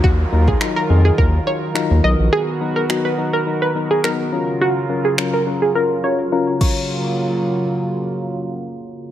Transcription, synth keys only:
\new Staff \with { instrumentName = "Synth keys" } { \time 4/4 \key fis \major \tempo 4 = 105 <fis dis' eis' ais'>8 <fis dis' eis' ais'>8 <fis dis' eis' ais'>8 <fis dis' eis' gis'>8 <fis dis' eis' ais'>8 <fis dis' eis' ais'>8 <fis dis' eis' ais'>8 <fis b dis' ais'>8~ | <fis b dis' ais'>8 <fis b dis' ais'>8 <fis b dis' fis'>8 <fis b dis' ais'>8 <fis b dis' ais'>8 <fis b dis' ais'>8 <fis b dis' ais'>8 <fis cis' eis' ais'>8~ | <fis cis' eis' ais'>8 <fis cis' eis' ais'>8 <fis cis' eis' ais'>8 <fis cis' eis' ais'>8 <fis cis' eis' ais'>8 <fis cis' eis' ais'>8 <fis cis' eis' ais'>8 <fis cis' eis' ais'>8~ | <fis cis' eis' ais'>1 | }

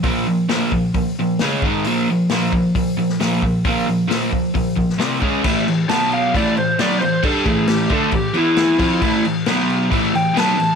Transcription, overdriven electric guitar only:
\new Staff \with { instrumentName = "Overdriven electric guitar" } { \clef bass \time 4/4 \key bes \lydian \tempo 4 = 134 <bes, f bes>8 <bes, f>8 <bes, f bes>8 <bes, f>8 <bes, f>8 <bes, f>8 <cis gis cis'>8 <gis, dis gis>8 | <bes, f bes>8 <bes, f>8 <bes, f bes>8 <bes, f>8 <bes, f>8 <bes, f>8 <bes, f bes>8 <bes, f>8 | <bes, f bes>8 <bes, f>8 <bes, f bes>8 <bes, f>8 <bes, f>8 <bes, f>8 <c g c'>8 <cis gis cis'>8 | <a, e a>8 <a, e>8 <b, fis b>4 <a, e a>8 <a, e>8 <b, fis b>8 <a, e>8 |
<g d' g'>8 <a, e a>4 <d a d'>8 <a, e>8 <e b e'>4 <f c' f'>8 | <a, e a>8 <a, e>8 <b, fis b>4 <a, e a>8 <a, e>8 <b, fis b>8 <a, e>8 | }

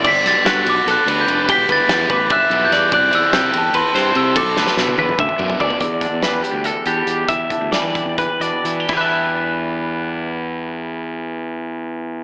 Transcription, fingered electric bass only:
\new Staff \with { instrumentName = "Fingered electric bass" } { \clef bass \time 7/8 \key e \minor \tempo 4 = 145 g,,8 b,,16 r16 g,8 b,,8 b,,16 r16 d,8 f,,8 | e,,8 g,,16 r16 e,8 a,,8 g,,16 r16 b,,8 e,8 | c,8 e,16 r16 c8 e,8 e,16 r16 g,8 c8 | b,,8 d,16 r16 b,8 e,8 d,16 r16 fis,8 d,16 r16 |
e,8. e,16 r16 e,16 r16 d,8 r16 e,8 e,8 | e,8 r16 d,16 r16 e8 e,8 r16 e,16 r16 e8 | e,2.~ e,8~ | e,2.~ e,8 | }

